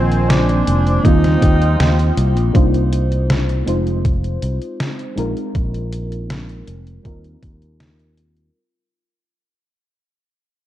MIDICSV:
0, 0, Header, 1, 6, 480
1, 0, Start_track
1, 0, Key_signature, -3, "major"
1, 0, Tempo, 750000
1, 1631, Time_signature, 4, 2, 24, 8
1, 6822, End_track
2, 0, Start_track
2, 0, Title_t, "Analog synth pad"
2, 0, Program_c, 0, 89
2, 0, Note_on_c, 0, 51, 81
2, 0, Note_on_c, 0, 72, 78
2, 0, Note_on_c, 0, 80, 92
2, 648, Note_off_c, 0, 80, 0
2, 659, Note_off_c, 0, 51, 0
2, 671, Note_on_c, 0, 65, 84
2, 671, Note_on_c, 0, 79, 93
2, 1609, Note_off_c, 0, 72, 0
2, 1622, Note_off_c, 0, 65, 0
2, 1622, Note_off_c, 0, 79, 0
2, 6822, End_track
3, 0, Start_track
3, 0, Title_t, "Tenor saxophone"
3, 0, Program_c, 1, 66
3, 0, Note_on_c, 1, 60, 97
3, 189, Note_on_c, 1, 62, 104
3, 199, Note_off_c, 1, 60, 0
3, 669, Note_on_c, 1, 63, 99
3, 678, Note_off_c, 1, 62, 0
3, 1390, Note_off_c, 1, 63, 0
3, 6822, End_track
4, 0, Start_track
4, 0, Title_t, "FM electric piano"
4, 0, Program_c, 2, 5
4, 0, Control_c, 2, 64, 127
4, 0, Note_on_c, 2, 51, 88
4, 0, Note_on_c, 2, 56, 84
4, 0, Note_on_c, 2, 58, 83
4, 0, Note_on_c, 2, 60, 84
4, 0, Note_on_c, 2, 65, 105
4, 619, Note_off_c, 2, 51, 0
4, 622, Note_off_c, 2, 56, 0
4, 624, Note_off_c, 2, 58, 0
4, 626, Note_off_c, 2, 60, 0
4, 629, Note_off_c, 2, 65, 0
4, 660, Note_on_c, 2, 51, 80
4, 665, Note_on_c, 2, 55, 73
4, 670, Note_on_c, 2, 58, 76
4, 675, Note_on_c, 2, 60, 72
4, 679, Control_c, 2, 64, 0
4, 680, Note_on_c, 2, 65, 87
4, 777, Control_c, 2, 64, 127
4, 1579, Note_off_c, 2, 51, 0
4, 1582, Note_off_c, 2, 55, 0
4, 1584, Note_off_c, 2, 58, 0
4, 1586, Note_off_c, 2, 60, 0
4, 1589, Note_off_c, 2, 65, 0
4, 1619, Note_on_c, 2, 58, 76
4, 1625, Note_on_c, 2, 62, 72
4, 1629, Note_on_c, 2, 63, 72
4, 1634, Note_on_c, 2, 65, 73
4, 1638, Note_on_c, 2, 72, 86
4, 1640, Control_c, 2, 64, 0
4, 1770, Control_c, 2, 64, 127
4, 2299, Note_off_c, 2, 58, 0
4, 2301, Note_off_c, 2, 62, 0
4, 2304, Note_off_c, 2, 63, 0
4, 2306, Note_off_c, 2, 65, 0
4, 2308, Note_off_c, 2, 72, 0
4, 2340, Note_on_c, 2, 56, 79
4, 2345, Note_on_c, 2, 60, 75
4, 2349, Note_on_c, 2, 63, 72
4, 2355, Note_on_c, 2, 65, 71
4, 2359, Control_c, 2, 64, 0
4, 2360, Note_on_c, 2, 72, 87
4, 2464, Control_c, 2, 64, 127
4, 3259, Note_off_c, 2, 56, 0
4, 3262, Note_off_c, 2, 60, 0
4, 3264, Note_off_c, 2, 63, 0
4, 3266, Note_off_c, 2, 65, 0
4, 3269, Note_off_c, 2, 72, 0
4, 3300, Note_on_c, 2, 56, 85
4, 3305, Note_on_c, 2, 60, 81
4, 3309, Note_on_c, 2, 63, 77
4, 3314, Note_on_c, 2, 65, 75
4, 3319, Control_c, 2, 64, 0
4, 3320, Note_on_c, 2, 70, 96
4, 3420, Control_c, 2, 64, 127
4, 4459, Note_off_c, 2, 56, 0
4, 4462, Note_off_c, 2, 60, 0
4, 4464, Note_off_c, 2, 63, 0
4, 4466, Note_off_c, 2, 65, 0
4, 4469, Note_off_c, 2, 70, 0
4, 4501, Note_on_c, 2, 55, 71
4, 4507, Note_on_c, 2, 60, 66
4, 4512, Note_on_c, 2, 63, 64
4, 4516, Note_on_c, 2, 65, 66
4, 4519, Control_c, 2, 64, 0
4, 4521, Note_on_c, 2, 70, 81
4, 4647, Control_c, 2, 64, 127
4, 5420, Note_off_c, 2, 55, 0
4, 5423, Note_off_c, 2, 60, 0
4, 5425, Note_off_c, 2, 63, 0
4, 5427, Note_off_c, 2, 65, 0
4, 5430, Note_off_c, 2, 70, 0
4, 5480, Control_c, 2, 64, 0
4, 6822, End_track
5, 0, Start_track
5, 0, Title_t, "Fingered electric bass"
5, 0, Program_c, 3, 33
5, 0, Note_on_c, 3, 34, 97
5, 394, Note_off_c, 3, 34, 0
5, 432, Note_on_c, 3, 29, 81
5, 625, Note_off_c, 3, 29, 0
5, 671, Note_on_c, 3, 39, 109
5, 865, Note_off_c, 3, 39, 0
5, 911, Note_on_c, 3, 39, 102
5, 1148, Note_off_c, 3, 39, 0
5, 1152, Note_on_c, 3, 39, 88
5, 1345, Note_off_c, 3, 39, 0
5, 1391, Note_on_c, 3, 36, 94
5, 1513, Note_off_c, 3, 36, 0
5, 1513, Note_on_c, 3, 34, 100
5, 1608, Note_off_c, 3, 34, 0
5, 1631, Note_on_c, 3, 36, 91
5, 2314, Note_off_c, 3, 36, 0
5, 2353, Note_on_c, 3, 29, 78
5, 2795, Note_off_c, 3, 29, 0
5, 2832, Note_on_c, 3, 36, 76
5, 2931, Note_off_c, 3, 36, 0
5, 3313, Note_on_c, 3, 34, 95
5, 3411, Note_off_c, 3, 34, 0
5, 3552, Note_on_c, 3, 34, 91
5, 4234, Note_off_c, 3, 34, 0
5, 4273, Note_on_c, 3, 29, 82
5, 4466, Note_off_c, 3, 29, 0
5, 4512, Note_on_c, 3, 39, 94
5, 4705, Note_off_c, 3, 39, 0
5, 4753, Note_on_c, 3, 39, 93
5, 5435, Note_off_c, 3, 39, 0
5, 6822, End_track
6, 0, Start_track
6, 0, Title_t, "Drums"
6, 75, Note_on_c, 9, 42, 41
6, 139, Note_off_c, 9, 42, 0
6, 192, Note_on_c, 9, 38, 122
6, 192, Note_on_c, 9, 42, 67
6, 256, Note_off_c, 9, 38, 0
6, 256, Note_off_c, 9, 42, 0
6, 315, Note_on_c, 9, 42, 38
6, 379, Note_off_c, 9, 42, 0
6, 431, Note_on_c, 9, 42, 97
6, 495, Note_off_c, 9, 42, 0
6, 555, Note_on_c, 9, 42, 43
6, 619, Note_off_c, 9, 42, 0
6, 671, Note_on_c, 9, 36, 116
6, 673, Note_on_c, 9, 42, 69
6, 735, Note_off_c, 9, 36, 0
6, 737, Note_off_c, 9, 42, 0
6, 795, Note_on_c, 9, 38, 36
6, 795, Note_on_c, 9, 42, 40
6, 859, Note_off_c, 9, 38, 0
6, 859, Note_off_c, 9, 42, 0
6, 911, Note_on_c, 9, 36, 98
6, 912, Note_on_c, 9, 42, 92
6, 975, Note_off_c, 9, 36, 0
6, 976, Note_off_c, 9, 42, 0
6, 1035, Note_on_c, 9, 42, 39
6, 1099, Note_off_c, 9, 42, 0
6, 1152, Note_on_c, 9, 38, 116
6, 1152, Note_on_c, 9, 42, 67
6, 1216, Note_off_c, 9, 38, 0
6, 1216, Note_off_c, 9, 42, 0
6, 1276, Note_on_c, 9, 42, 40
6, 1340, Note_off_c, 9, 42, 0
6, 1391, Note_on_c, 9, 42, 89
6, 1455, Note_off_c, 9, 42, 0
6, 1515, Note_on_c, 9, 42, 41
6, 1579, Note_off_c, 9, 42, 0
6, 1631, Note_on_c, 9, 36, 121
6, 1632, Note_on_c, 9, 42, 65
6, 1695, Note_off_c, 9, 36, 0
6, 1696, Note_off_c, 9, 42, 0
6, 1755, Note_on_c, 9, 42, 38
6, 1819, Note_off_c, 9, 42, 0
6, 1872, Note_on_c, 9, 42, 91
6, 1936, Note_off_c, 9, 42, 0
6, 1995, Note_on_c, 9, 42, 41
6, 2059, Note_off_c, 9, 42, 0
6, 2111, Note_on_c, 9, 38, 119
6, 2111, Note_on_c, 9, 42, 66
6, 2175, Note_off_c, 9, 38, 0
6, 2175, Note_off_c, 9, 42, 0
6, 2235, Note_on_c, 9, 42, 38
6, 2299, Note_off_c, 9, 42, 0
6, 2352, Note_on_c, 9, 42, 96
6, 2416, Note_off_c, 9, 42, 0
6, 2475, Note_on_c, 9, 42, 41
6, 2539, Note_off_c, 9, 42, 0
6, 2591, Note_on_c, 9, 36, 118
6, 2591, Note_on_c, 9, 42, 64
6, 2655, Note_off_c, 9, 36, 0
6, 2655, Note_off_c, 9, 42, 0
6, 2715, Note_on_c, 9, 42, 39
6, 2779, Note_off_c, 9, 42, 0
6, 2831, Note_on_c, 9, 42, 90
6, 2895, Note_off_c, 9, 42, 0
6, 2954, Note_on_c, 9, 42, 39
6, 3018, Note_off_c, 9, 42, 0
6, 3073, Note_on_c, 9, 38, 113
6, 3073, Note_on_c, 9, 42, 69
6, 3137, Note_off_c, 9, 38, 0
6, 3137, Note_off_c, 9, 42, 0
6, 3195, Note_on_c, 9, 42, 36
6, 3259, Note_off_c, 9, 42, 0
6, 3312, Note_on_c, 9, 42, 92
6, 3376, Note_off_c, 9, 42, 0
6, 3435, Note_on_c, 9, 42, 38
6, 3499, Note_off_c, 9, 42, 0
6, 3551, Note_on_c, 9, 42, 65
6, 3552, Note_on_c, 9, 36, 123
6, 3615, Note_off_c, 9, 42, 0
6, 3616, Note_off_c, 9, 36, 0
6, 3676, Note_on_c, 9, 42, 37
6, 3740, Note_off_c, 9, 42, 0
6, 3792, Note_on_c, 9, 42, 90
6, 3856, Note_off_c, 9, 42, 0
6, 3917, Note_on_c, 9, 42, 38
6, 3981, Note_off_c, 9, 42, 0
6, 4033, Note_on_c, 9, 38, 112
6, 4033, Note_on_c, 9, 42, 64
6, 4097, Note_off_c, 9, 38, 0
6, 4097, Note_off_c, 9, 42, 0
6, 4156, Note_on_c, 9, 42, 35
6, 4220, Note_off_c, 9, 42, 0
6, 4272, Note_on_c, 9, 42, 91
6, 4336, Note_off_c, 9, 42, 0
6, 4396, Note_on_c, 9, 42, 38
6, 4460, Note_off_c, 9, 42, 0
6, 4512, Note_on_c, 9, 42, 61
6, 4513, Note_on_c, 9, 36, 113
6, 4576, Note_off_c, 9, 42, 0
6, 4577, Note_off_c, 9, 36, 0
6, 4636, Note_on_c, 9, 42, 37
6, 4700, Note_off_c, 9, 42, 0
6, 4753, Note_on_c, 9, 36, 97
6, 4753, Note_on_c, 9, 42, 88
6, 4817, Note_off_c, 9, 36, 0
6, 4817, Note_off_c, 9, 42, 0
6, 4876, Note_on_c, 9, 42, 38
6, 4940, Note_off_c, 9, 42, 0
6, 4994, Note_on_c, 9, 38, 117
6, 4994, Note_on_c, 9, 42, 64
6, 5058, Note_off_c, 9, 38, 0
6, 5058, Note_off_c, 9, 42, 0
6, 5117, Note_on_c, 9, 42, 36
6, 5181, Note_off_c, 9, 42, 0
6, 5232, Note_on_c, 9, 42, 88
6, 5296, Note_off_c, 9, 42, 0
6, 5355, Note_on_c, 9, 42, 39
6, 5419, Note_off_c, 9, 42, 0
6, 6822, End_track
0, 0, End_of_file